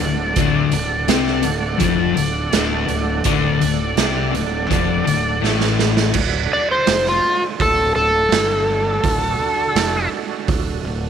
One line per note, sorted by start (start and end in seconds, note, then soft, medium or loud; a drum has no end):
0.00 0.34 D1 medium
0.00 0.30 D2 medium
0.00 0.36 D4 medium
0.00 0.35 A4 medium
0.00 5.40 D5 medium
0.00 0.36 F#5 medium
0.00 closed hi-hat medium
0.36 0.70 D1 medium
0.36 0.72 D2 medium
0.36 0.73 D3 loud
0.36 3.24 D4 medium
0.36 3.23 A4 medium
0.36 3.24 F#5 medium
0.36 kick loud
0.36 closed hi-hat medium
0.72 1.07 D1 medium
0.72 1.02 D2 medium
0.72 closed hi-hat medium
1.08 1.42 C2 medium
1.08 1.43 C3 medium
1.08 1.44 C4 medium
1.08 snare medium
1.08 closed hi-hat medium
1.27 snare soft
1.43 1.79 D1 medium
1.43 1.73 D2 medium
1.43 closed hi-hat medium
1.78 2.15 F1 medium
1.78 2.15 F2 medium
1.78 2.16 F3 medium
1.78 kick loud
1.78 closed hi-hat medium
2.15 2.51 D1 medium
2.15 2.46 D2 medium
2.15 closed hi-hat medium
2.52 2.87 D1 medium
2.52 2.88 D2 medium
2.52 2.89 D3 medium
2.52 snare loud
2.52 closed hi-hat medium
2.88 3.23 D1 medium
2.88 3.19 D2 medium
2.88 closed hi-hat medium
3.24 3.59 D1 medium
3.24 3.59 D2 loud
3.24 3.61 D3 loud
3.24 6.13 D4 medium
3.24 6.12 A4 medium
3.24 6.13 D5 medium
3.24 6.13 F#5 medium
3.24 kick medium
3.24 closed hi-hat medium
3.60 3.96 D1 medium
3.60 3.90 D2 medium
3.60 closed hi-hat medium
3.97 4.32 C2 medium
3.97 4.33 C3 medium
3.97 4.33 C4 medium
3.97 snare loud
3.97 closed hi-hat medium
4.33 4.68 D1 medium
4.33 4.63 D2 medium
4.33 closed hi-hat medium
4.69 5.04 F1 medium
4.69 5.05 F2 medium
4.69 5.05 F3 medium
4.69 kick loud
4.69 closed hi-hat medium
5.05 5.41 D1 medium
5.05 5.35 D2 medium
5.05 closed hi-hat medium
5.41 6.11 A1 medium
5.41 6.13 A2 medium
5.41 6.14 A3 medium
5.41 snare medium
5.61 snare medium
5.79 snare medium
5.97 snare medium
6.14 6.48 D1 medium
6.14 9.01 F#3 medium
6.14 9.01 D4 medium
6.14 9.01 A4 medium
6.14 9.01 D5 medium
6.14 kick loud
6.14 crash loud
6.51 6.70 D5 medium
6.51 muted fingered electric bass stroke soft
6.71 7.05 C5 medium
6.87 7.21 F1 medium
6.87 snare loud
6.87 open hi-hat medium
7.06 7.42 F4 medium
7.06 snare soft
7.24 muted fingered electric bass stroke soft
7.59 7.93 D1 medium
7.59 7.95 A4 medium
7.59 kick loud
7.59 open hi-hat medium
7.96 8.29 D1 medium
7.96 10.08 A4 medium
8.32 9.00 G1 medium
8.32 snare loud
8.32 open hi-hat medium
9.04 9.37 D1 medium
9.04 11.10 D4 medium
9.04 11.10 F#4 medium
9.04 11.10 A4 medium
9.04 kick loud
9.04 open hi-hat medium
9.40 muted fingered electric bass stroke soft
9.75 10.09 F1 medium
9.75 snare loud
9.75 open hi-hat medium
10.11 muted fingered electric bass stroke soft
10.48 10.82 D1 medium
10.48 kick loud
10.48 open hi-hat medium
10.83 11.10 D1 medium